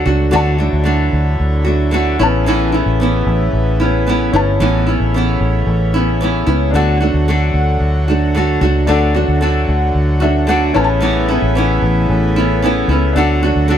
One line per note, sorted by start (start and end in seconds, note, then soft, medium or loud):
0.00 2.17 D3 medium
0.00 2.17 F#3 medium
0.00 2.17 A3 medium
0.00 0.28 F#4 medium
0.00 0.32 F#4 medium
0.06 0.31 C#2 medium
0.06 0.31 A3 soft
0.06 0.32 D4 medium
0.06 0.32 F#4 medium
0.31 0.70 D2 loud
0.31 0.59 D3 medium
0.31 0.60 A3 medium
0.31 0.59 D4 medium
0.31 6.71 E4 medium
0.31 2.16 F#4 medium
0.31 0.57 F#4 medium
0.31 2.17 D5 medium
0.35 2.18 A5 medium
0.58 0.84 A3 soft
0.58 0.84 D4 medium
0.58 0.85 F#4 medium
0.73 1.10 D2 medium
0.84 1.65 D3 medium
0.84 1.67 A3 medium
0.84 1.65 D4 medium
0.84 1.63 F#4 medium
1.13 1.38 D2 loud
1.40 2.16 D2 loud
1.65 1.91 A3 soft
1.65 1.92 D4 medium
1.65 1.92 F#4 medium
1.91 2.19 D3 medium
1.91 2.20 A3 medium
1.91 2.20 D4 medium
1.91 2.19 F#4 medium
2.19 2.83 A1 medium
2.19 6.70 C#3 medium
2.19 13.78 A3 medium
2.19 4.32 B3 medium
2.19 2.46 B3 soft
2.19 4.30 C#4 medium
2.19 2.47 C#4 medium
2.19 2.47 E4 medium
2.19 4.31 B4 medium
2.19 4.32 A5 medium
2.46 2.73 A2 medium
2.46 2.74 E3 medium
2.46 2.74 B3 medium
2.46 2.73 C#4 medium
2.46 2.71 E4 medium
2.72 3.00 B3 medium
2.72 3.01 C#4 medium
2.72 3.00 E4 medium
2.86 3.23 A1 medium
3.00 3.80 E3 medium
3.00 3.81 B3 medium
3.00 3.80 C#4 medium
3.00 3.79 E4 medium
3.27 3.52 A1 loud
3.53 4.30 A1 loud
3.80 4.06 B3 soft
3.80 4.08 C#4 medium
3.80 4.07 E4 medium
4.07 4.34 E3 medium
4.07 4.34 B3 medium
4.07 4.34 C#4 medium
4.07 4.32 E4 medium
4.32 4.58 G1 medium
4.32 6.43 C#4 medium
4.32 6.73 C#4 medium
4.32 4.60 C#4 medium
4.32 4.61 E4 medium
4.32 6.44 B4 medium
4.32 6.45 A5 medium
4.37 4.60 B3 soft
4.60 4.98 A1 loud
4.60 4.87 A2 medium
4.60 4.87 E3 medium
4.60 4.88 B3 medium
4.60 4.87 C#4 medium
4.60 4.85 E4 medium
4.87 5.15 B3 soft
4.87 5.15 C#4 medium
4.87 5.14 E4 medium
5.00 5.37 A1 medium
5.14 5.95 E3 medium
5.14 5.95 B3 medium
5.14 5.95 C#4 medium
5.14 5.93 E4 medium
5.41 5.65 A1 loud
5.67 6.44 A1 loud
5.94 6.21 B3 soft
5.94 6.22 C#4 medium
5.94 6.21 E4 medium
6.21 6.48 E3 medium
6.21 6.48 B3 medium
6.21 6.47 C#4 medium
6.21 6.45 E4 medium
6.47 6.72 C#2 medium
6.47 6.75 B3 medium
6.47 6.75 C#4 medium
6.47 6.74 E4 medium
6.71 7.11 D2 loud
6.71 7.01 D3 medium
6.71 10.72 F#3 medium
6.71 8.83 D4 medium
6.71 10.72 F#4 medium
6.71 8.84 A4 medium
6.75 10.72 D3 medium
6.75 7.02 A3 medium
6.75 7.01 D4 medium
6.75 6.99 F#4 medium
6.75 8.85 F#5 medium
7.01 7.27 A3 soft
7.01 7.28 D4 medium
7.01 7.28 F#4 medium
7.14 7.51 D2 medium
7.28 8.08 D3 medium
7.28 8.10 A3 medium
7.28 8.08 D4 medium
7.28 8.07 F#4 medium
7.54 7.79 D2 medium
7.80 8.57 D2 loud
8.08 8.34 A3 soft
8.08 8.35 D4 medium
8.08 8.35 F#4 medium
8.35 8.62 D3 medium
8.35 8.62 A3 medium
8.35 8.62 D4 medium
8.35 8.60 F#4 medium
8.61 8.86 C#2 medium
8.61 8.87 A3 soft
8.61 8.87 D4 medium
8.61 8.87 F#4 medium
8.87 9.25 D2 loud
8.87 9.15 D3 medium
8.87 9.15 A3 medium
8.87 10.71 D4 medium
8.87 9.15 D4 medium
8.87 9.13 F#4 medium
8.87 10.72 A4 medium
8.87 10.47 F#5 medium
9.14 9.41 A3 soft
9.14 9.41 D4 medium
9.14 9.42 F#4 medium
9.28 9.65 D2 medium
9.41 10.22 D3 medium
9.41 10.23 A3 medium
9.41 10.21 D4 medium
9.41 10.19 F#4 medium
9.69 9.93 D2 medium
9.95 10.71 D2 medium
10.20 10.47 A3 medium
10.20 10.48 D4 medium
10.20 10.48 F#4 medium
10.20 10.47 E5 medium
10.47 10.75 D3 medium
10.47 10.75 A3 medium
10.47 10.76 D4 medium
10.47 10.74 F#4 medium
10.47 10.74 F#5 medium
10.74 11.39 A1 loud
10.74 13.14 C#3 medium
10.74 11.01 B3 soft
10.74 13.14 B3 medium
10.74 12.85 C#4 medium
10.74 11.01 C#4 medium
10.74 11.02 E4 medium
10.74 13.14 E4 medium
10.74 12.85 B4 medium
10.74 10.83 G#5 medium
10.74 10.83 A5 medium
10.84 12.90 A5 loud
11.01 11.28 A2 medium
11.01 11.29 E3 medium
11.01 11.29 B3 medium
11.01 11.29 C#4 medium
11.01 11.27 E4 medium
11.28 11.55 B3 medium
11.28 11.56 C#4 medium
11.28 11.56 E4 medium
11.42 11.79 A1 medium
11.55 12.36 E3 medium
11.55 12.36 B3 medium
11.55 12.37 C#4 medium
11.55 12.35 E4 medium
11.82 12.07 A1 loud
12.10 12.86 A1 loud
12.36 12.62 B3 medium
12.36 12.63 C#4 medium
12.36 12.63 E4 medium
12.62 12.89 E3 medium
12.62 12.90 B3 medium
12.62 12.90 C#4 medium
12.62 12.88 E4 medium
12.88 13.13 C#2 medium
12.88 13.17 C#4 medium
12.88 13.16 E4 medium
12.93 13.17 B3 soft
13.13 13.53 D2 loud
13.13 13.78 D3 medium
13.13 13.43 D3 medium
13.13 13.78 F#3 medium
13.13 13.43 A3 medium
13.13 13.78 D4 medium
13.13 13.78 F#4 medium
13.13 13.78 A4 medium
13.13 13.78 F#5 medium
13.17 13.43 D4 medium
13.17 13.41 F#4 medium
13.43 13.68 A3 soft
13.43 13.69 D4 medium
13.43 13.70 F#4 medium
13.56 13.78 D2 medium
13.68 13.78 D3 medium
13.68 13.78 A3 medium
13.68 13.78 D4 medium
13.68 13.78 F#4 medium